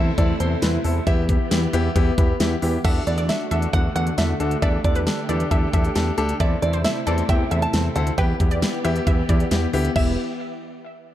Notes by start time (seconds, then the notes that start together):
Already playing: E2 C3 A3 C4 E4 A4 E5
0.18 E2 C4 E4 A4 D5, kick, closed hi-hat
0.40 E2 C4 E4 A4 C5, closed hi-hat
0.62 E2 C4 E4 B4, snare, closed hi-hat
0.84 E2 C4 E4 A4, open hi-hat
1.07 E2 E3 B3 E4 G4 E5, kick, closed hi-hat
1.29 B3 E4 G4, kick, closed hi-hat
1.51 E2 B3 E4 G4, snare, closed hi-hat
1.73 E2 B3 E4 G4, closed hi-hat
1.96 E2 B3 E4 G4, kick, closed hi-hat
2.18 E2 B3 E4 G4 B5, kick, closed hi-hat
2.40 E2 B3 E4 G4 G5, snare, closed hi-hat
2.62 E2 B3 E4 G4, open hi-hat
2.84 E2 D3 A3 D4 F#4 A4 E5 F#5, kick, closed hi-hat, crash
3.07 E2 D4 F#4 A4 D5, closed hi-hat
3.18 D5, closed hi-hat
3.29 D4 F#4 A4 E5, snare, closed hi-hat
3.51 E2 D4 F#4 A4 E5, closed hi-hat
3.62 closed hi-hat
3.73 E2 D4 F#4 A4 F#5, kick, closed hi-hat
3.96 E2 D4 F#4 A4 F#5, closed hi-hat
4.07 closed hi-hat
4.18 E2 D4 F#4 A4 E5, snare, closed hi-hat
4.40 D2 D4 F#4 A4, closed hi-hat
4.51 closed hi-hat
4.62 E2 D4 G4 A4 D5 E5, kick, closed hi-hat
4.84 E2 D4 G4 A4 D5, kick, closed hi-hat
4.95 B4, closed hi-hat
5.07 D4 G4 A4, snare, closed hi-hat
5.29 E2 D4 G4 A4 D5, closed hi-hat
5.40 closed hi-hat
5.51 E2 D4 G4 A4 E5, kick, closed hi-hat
5.73 E2 D4 G4 A4 E5, kick, closed hi-hat
5.84 closed hi-hat
5.95 E2 D4 G4 A4, snare, closed hi-hat
6.18 D2 D4 G4 A4, closed hi-hat
6.29 closed hi-hat
6.40 E2 C3 A3 C4 E4 A4 D5 E5, kick, closed hi-hat
6.62 E2 C4 E4 A4 D5, closed hi-hat
6.73 C5, closed hi-hat
6.84 C4 E4 A4 E5, snare, closed hi-hat
7.07 E2 C4 E4 A4 D5, closed hi-hat
7.18 closed hi-hat
7.29 E2 C4 E4 G4 E5 G5, kick, closed hi-hat
7.51 E2 C4 E4 A4 E5, closed hi-hat
7.62 A5, closed hi-hat
7.73 E2 C4 E4 A4, snare, closed hi-hat
7.96 D2 C4 E4 A4 F#5, closed hi-hat
8.07 closed hi-hat
8.18 E2 E3 B3 E4 G4 B4 G5, kick, closed hi-hat
8.40 E2 B3 E4 G4, kick, closed hi-hat
8.51 D5, closed hi-hat
8.62 B3 E4 G4, snare, closed hi-hat
8.85 E2 B3 E4 G4 E5, closed hi-hat
8.96 closed hi-hat
9.07 E2 B3 E4 G4 E5, kick, closed hi-hat
9.29 E2 B3 E4 G4 D5, kick, closed hi-hat
9.40 closed hi-hat
9.51 E2 B3 E4 G4, snare, closed hi-hat
9.73 D2 B3 E4 G4, open hi-hat
9.85 closed hi-hat
9.96 E1 E3 B3 E4 G4 E5, kick, crash